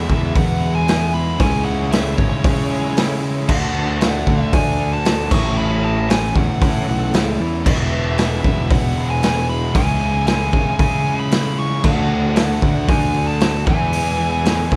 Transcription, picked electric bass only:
0.10 0.34 E2 medium
0.36 1.36 E2 loud
1.40 2.14 C#2 loud
2.18 2.31 G#1 medium
2.45 3.45 C#3 loud
3.49 4.23 D2 loud
4.28 4.52 D2 loud
4.53 5.27 D2 medium
5.31 6.31 A1 medium
6.36 6.48 E2 medium
6.62 6.86 A2 loud
6.88 7.11 B1 medium
7.14 7.37 C#2 medium
7.40 7.63 E2 medium
7.66 8.40 E1 loud
8.45 8.69 E1 medium
8.71 9.71 E1 loud
9.75 10.49 C#2 loud
10.54 10.66 G#1 medium
10.80 11.80 C#3 loud
11.84 12.58 D2 loud
12.62 12.87 D2 loud
12.89 13.63 D2 loud
13.67 14.68 E2 loud
14.72 14.76 B1 medium

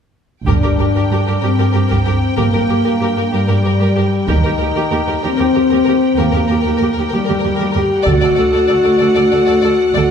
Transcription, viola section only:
0.46 0.53 G4 soft
0.64 0.70 G4 soft
0.80 0.86 G4 soft
0.96 1.02 G4 soft
1.12 1.18 G4 soft
1.28 1.34 G4 soft
1.43 1.49 G4 soft
1.59 1.65 G4 soft
1.74 1.80 G4 soft
1.91 1.97 G4 soft
2.06 2.12 G4 soft
2.37 2.44 G4 soft
2.53 2.60 G4 soft
2.69 2.76 G4 soft
2.84 2.91 G4 soft
3.01 3.07 G4 soft
3.16 3.23 G4 soft
3.32 3.38 G4 soft
3.48 3.54 G4 soft
3.63 3.70 G4 soft
3.79 3.86 G4 soft
3.96 4.02 G4 soft
4.28 4.35 G4 soft
4.45 4.51 G4 soft
4.60 4.66 G4 soft
4.76 4.82 G4 soft
4.92 4.98 G4 soft
5.08 5.14 G4 soft
5.24 5.30 G4 soft
5.39 5.45 G4 soft
5.55 5.62 G4 soft
5.72 5.78 G4 soft
5.89 5.94 G4 soft
6.19 6.25 G4 soft
6.34 6.40 G4 soft
6.51 6.57 G4 soft
6.66 6.72 G4 soft
6.82 6.88 G4 soft
6.98 7.04 G4 soft
7.13 7.19 G4 soft
7.29 7.35 G4 soft
7.45 7.51 G4 soft
7.60 7.66 G4 soft
7.76 7.82 G4 soft
8.06 8.12 A4 soft
8.23 8.29 A4 soft
8.38 8.44 A4 soft
8.53 8.59 A4 soft
8.69 8.76 A4 soft
8.84 8.91 A4 soft
9.00 9.07 A4 soft
9.16 9.23 A4 soft
9.32 9.39 A4 soft
9.48 9.54 A4 soft
9.64 9.70 A4 soft
9.96 10.02 A4 soft

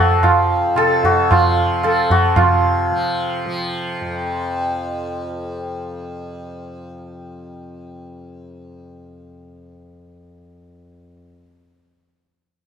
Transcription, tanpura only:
0.00 0.18 F2 medium
0.00 0.75 C3 medium
0.00 1.29 F3 medium
0.19 4.01 F2 medium
0.75 2.36 C3 medium
1.29 1.85 F3 medium
1.85 2.92 F3 medium
2.37 9.52 C3 medium
2.92 3.46 F3 medium
3.46 10.47 F3 medium
4.01 11.16 F2 medium

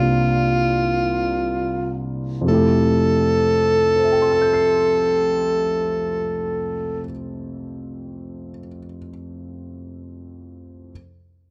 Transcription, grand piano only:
0.00 2.45 C2 soft
0.00 2.43 C3 soft
0.00 2.45 A#3 soft
0.00 2.46 D4 soft
0.00 2.46 F4 soft
0.00 2.47 A#4 soft
2.41 7.00 F2 medium
2.41 7.04 C3 soft
2.47 7.06 A3 soft
2.47 7.10 E4 soft
2.54 7.12 G4 medium
3.96 8.51 C5 soft
4.04 8.59 E5 soft
4.12 8.67 G5 soft
4.22 8.77 C6 soft
4.31 8.86 E6 soft
4.42 8.96 G6 soft
4.53 9.08 C7 soft

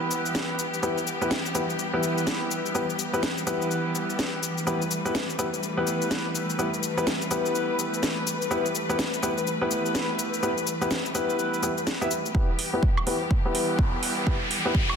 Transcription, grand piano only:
0.00 0.81 B3 medium
0.00 0.80 E4 medium
0.00 0.81 G4 medium
0.00 0.80 B4 loud
0.83 0.95 B3 medium
0.83 0.95 E4 medium
0.83 0.95 G4 medium
0.83 0.95 B4 medium
1.21 1.29 B3 medium
1.21 1.29 E4 medium
1.21 1.29 G4 medium
1.21 1.29 B4 medium
1.55 1.62 B3 medium
1.55 1.62 E4 medium
1.55 1.62 G4 medium
1.55 1.62 B4 medium
1.93 2.73 B3 medium
1.93 2.73 E4 medium
1.93 2.73 G4 medium
1.93 2.73 B4 medium
2.75 2.82 B3 medium
2.75 2.82 E4 medium
2.75 2.82 G4 medium
2.75 2.82 B4 medium
3.13 3.18 B3 medium
3.13 3.18 E4 medium
3.13 3.18 G4 medium
3.13 3.18 B4 medium
3.47 4.64 B3 medium
3.47 4.64 E4 medium
3.47 4.65 G4 medium
3.47 4.65 B4 medium
4.67 4.79 B3 medium
4.67 4.79 E4 medium
4.67 4.79 G4 medium
4.67 4.79 B4 medium
5.05 5.13 B3 medium
5.05 5.13 E4 medium
5.05 5.13 G4 medium
5.05 5.13 B4 medium
5.39 5.46 B3 medium
5.39 5.46 E4 medium
5.39 5.46 G4 medium
5.39 5.46 B4 medium
5.77 6.56 B3 medium
5.77 6.56 E4 medium
5.77 6.56 G4 medium
5.77 6.56 B4 medium
6.59 6.66 B3 medium
6.59 6.66 E4 medium
6.59 6.66 G4 medium
6.59 6.66 B4 medium
6.97 7.02 B3 medium
6.97 7.02 E4 medium
6.97 7.02 G4 medium
6.97 7.02 B4 medium
7.31 8.48 B3 medium
7.31 8.48 E4 medium
7.31 8.48 G4 medium
7.31 8.48 B4 medium
8.51 8.63 B3 medium
8.51 8.63 E4 medium
8.51 8.63 G4 medium
8.51 8.63 B4 medium
8.89 8.97 B3 medium
8.89 8.97 E4 medium
8.89 8.97 G4 medium
8.89 8.97 B4 medium
9.23 9.30 B3 medium
9.23 9.30 E4 medium
9.23 9.30 G4 medium
9.23 9.30 B4 medium
9.61 10.40 B3 medium
9.61 10.40 E4 medium
9.61 10.40 G4 medium
9.61 10.40 B4 medium
10.43 10.50 B3 medium
10.43 10.50 E4 medium
10.43 10.50 G4 medium
10.43 10.50 B4 medium
10.81 10.86 B3 medium
10.81 10.86 E4 medium
10.81 10.86 G4 medium
10.81 10.86 B4 medium
11.15 11.61 B3 medium
11.15 11.61 E4 medium
11.15 11.61 G4 medium
11.15 11.61 B4 loud
11.63 11.70 B3 medium
11.63 11.70 E4 medium
11.63 11.70 G4 medium
11.63 11.70 B4 medium
12.01 12.06 B3 medium
12.01 12.06 E4 medium
12.01 12.06 G4 medium
12.01 12.06 E5 medium
12.35 12.47 B3 medium
12.35 12.47 E4 medium
12.35 12.47 G4 medium
12.35 12.47 B4 medium
12.73 12.81 B3 medium
12.73 12.81 E4 medium
12.73 12.81 G4 medium
12.73 12.81 B4 medium
13.07 13.14 B3 medium
13.07 13.14 E4 medium
13.07 13.14 G4 medium
13.07 13.14 B4 medium
13.45 14.24 B3 medium
13.45 14.24 E4 medium
13.45 14.24 G4 medium
13.45 14.24 B4 medium
14.27 14.34 B3 medium
14.27 14.34 E4 medium
14.27 14.34 G4 medium
14.27 14.34 B4 medium
14.65 14.70 B3 medium
14.65 14.70 E4 medium
14.65 14.70 G4 medium
14.65 14.70 B4 medium

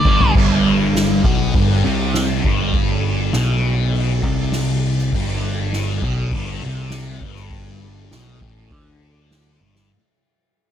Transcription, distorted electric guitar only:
0.05 0.33 G2 medium
0.34 1.23 G2 loud
1.25 1.53 B2 loud
1.55 1.84 G2 loud
1.84 2.43 C3 loud
2.43 3.32 G2 loud
3.33 4.22 B2 loud
4.24 5.12 C3 medium
5.14 6.02 G2 loud
6.04 6.32 B2 loud
6.34 6.62 G2 loud
6.65 7.22 C3 medium
7.24 8.12 G2 loud
8.13 8.41 B2 loud
8.42 8.72 A2 loud
8.72 9.60 D3 loud
9.61 9.90 G2 medium

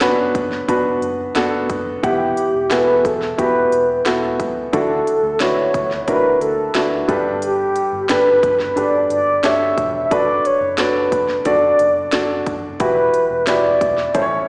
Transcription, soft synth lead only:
2.05 2.73 G4 loud
2.72 3.07 B4 loud
3.06 3.39 A4 medium
3.39 4.02 B4 loud
4.73 5.42 A4 medium
5.40 6.08 C#5 loud
6.09 6.39 B4 medium
6.42 7.05 A4 medium
7.43 8.06 G4 loud
8.11 8.79 B4 medium
8.78 9.11 D5 loud
9.12 9.47 D5 loud
9.45 10.05 E5 medium
10.05 10.14 E5 medium
10.12 10.48 D5 loud
10.46 10.82 C#5 medium
10.80 11.47 B4 medium
11.47 12.43 D5 medium
12.81 13.49 B4 medium
13.48 14.17 D5 loud
14.16 14.48 C#5 loud

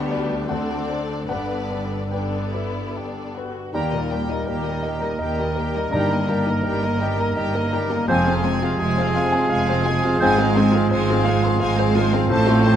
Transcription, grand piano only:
0.00 0.48 D2 medium
0.00 0.51 G4 soft
0.00 0.51 E5 medium
0.11 0.46 D4 soft
0.11 0.48 F#4 soft
0.11 0.46 B4 soft
0.11 0.47 D5 soft
0.49 1.27 D2 soft
0.49 1.25 A4 soft
0.49 1.24 F#5 medium
0.89 1.25 D4 soft
0.89 1.25 C5 soft
1.29 3.71 G2 soft
1.29 2.09 B4 soft
1.29 2.08 F#5 medium
1.72 2.38 G3 soft
2.11 2.79 D4 soft
2.11 2.53 B4 soft
2.11 3.31 G5 soft
2.54 3.19 B4 soft
2.97 3.60 G4 soft
3.37 3.75 B4 soft
3.74 5.90 D#2 soft
3.92 4.22 A#2 soft
4.12 4.41 G3 soft
4.29 4.58 D#4 soft
4.47 4.77 A#4 soft
4.63 4.94 G4 soft
4.83 5.12 D#5 soft
5.00 5.31 A#5 soft
5.19 5.49 D#5 soft
5.39 5.69 G4 soft
5.55 5.86 A#4 soft
5.76 5.94 D#4 soft
5.91 8.04 G2 medium
6.10 6.40 G3 soft
6.29 6.58 A#3 soft
6.46 6.76 D#4 soft
6.63 6.93 A#4 medium
6.83 7.12 D#4 soft
7.02 7.31 D#5 medium
7.20 7.49 A#5 medium
7.37 7.66 D#5 medium
7.55 7.84 A#4 medium
7.73 8.02 D#4 medium
7.90 8.09 A#3 medium
8.08 10.16 F2 medium
8.27 8.56 C3 medium
8.45 8.73 C4 medium
8.62 8.91 F4 medium
8.80 9.08 G#4 medium
8.98 9.26 C5 medium
9.16 9.44 F5 medium
9.32 9.61 G#5 medium
9.50 9.78 F5 medium
9.69 9.97 C5 medium
9.86 10.14 G#4 medium
10.03 10.21 F4 medium
10.22 12.28 G#2 medium
10.38 10.67 G#3 medium
10.56 10.85 C4 medium
10.71 11.01 F4 medium
10.91 11.19 C5 medium
11.10 11.37 F4 medium
11.25 11.53 F5 medium
11.44 11.72 C6 medium
11.60 11.89 F5 medium
11.79 12.07 C5 medium
11.95 12.24 F4 medium
12.13 12.31 C4 medium
12.30 12.76 A2 medium
12.47 12.75 A3 medium
12.66 12.76 C4 medium

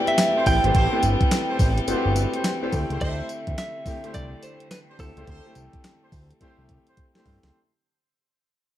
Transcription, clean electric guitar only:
0.08 0.47 E5 loud
0.47 1.56 G5 loud
3.01 3.57 E5 loud
3.58 4.14 E5 loud
4.14 4.44 D5 loud
4.43 4.71 C5 medium
4.71 4.79 B4 medium
5.00 6.94 A4 medium

